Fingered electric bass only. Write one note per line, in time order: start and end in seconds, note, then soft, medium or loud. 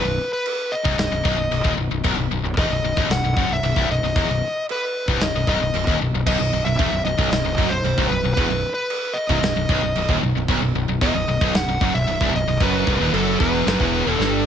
0.05 0.18 B0 medium
0.85 0.97 C1 medium
0.98 1.10 B0 medium
1.11 1.24 B0 medium
1.25 1.37 B0 medium
1.38 1.50 B0 medium
1.51 1.63 B0 medium
1.64 1.77 D#1 loud
1.78 1.90 B0 medium
1.91 2.04 B0 medium
2.04 2.17 B0 loud
2.17 2.30 B0 medium
2.31 2.43 B0 medium
2.43 2.56 B0 medium
2.57 2.69 E1 loud
2.70 2.82 B0 medium
2.83 2.95 B0 medium
2.97 3.09 B0 loud
3.10 3.22 B0 medium
3.23 3.36 B0 medium
3.37 3.49 F#1 medium
3.49 3.62 B0 medium
3.63 3.75 B0 medium
3.76 3.88 C1 loud
3.89 4.01 B0 medium
4.03 4.15 B0 medium
4.16 4.28 E1 loud
4.28 4.41 B0 medium
5.08 5.20 C1 medium
5.21 5.33 B0 medium
5.34 5.46 B0 medium
5.47 5.60 B0 medium
5.60 5.73 B0 medium
5.73 5.86 B0 medium
5.87 5.99 D#1 loud
6.00 6.12 B0 medium
6.13 6.25 B0 medium
6.26 6.39 B0 medium
6.40 6.52 B0 medium
6.53 6.65 B0 medium
6.66 6.78 B0 medium
6.79 6.91 E1 loud
6.91 7.04 B0 medium
7.04 7.17 B0 medium
7.18 7.31 B0 loud
7.31 7.44 B0 medium
7.44 7.57 B0 medium
7.58 7.70 F#1 medium
7.70 7.83 B0 medium
7.84 7.96 B0 medium
7.98 8.10 C1 loud
8.10 8.22 B0 medium
8.23 8.36 B0 medium
8.37 8.49 E1 medium
8.50 8.63 B0 medium
9.29 9.42 C1 medium
9.42 9.55 B0 medium
9.55 9.68 B0 medium
9.69 9.82 B0 loud
9.82 9.95 B0 medium
9.96 10.08 B0 medium
10.09 10.21 D#1 loud
10.23 10.35 B0 medium
10.35 10.48 B0 medium
10.48 10.61 B0 loud
10.62 10.74 B0 medium
10.75 10.88 B0 medium
10.89 11.01 B0 medium
11.02 11.14 E1 loud
11.15 11.27 B0 medium
11.28 11.40 B0 medium
11.41 11.54 B0 loud
11.54 11.67 B0 medium
11.68 11.80 B0 medium
11.81 11.93 F#1 loud
11.95 12.07 B0 medium
12.08 12.20 B0 medium
12.21 12.33 C1 loud
12.34 12.46 B0 medium
12.47 12.60 B0 medium
12.60 12.85 F#1 loud
12.87 12.99 C1 medium
13.00 13.13 D#1 loud
13.13 13.38 F#1 loud
13.40 13.65 E1 medium
13.66 13.79 F#1 loud
13.80 14.05 E1 loud
14.06 14.19 D#1 medium
14.19 14.44 G1 medium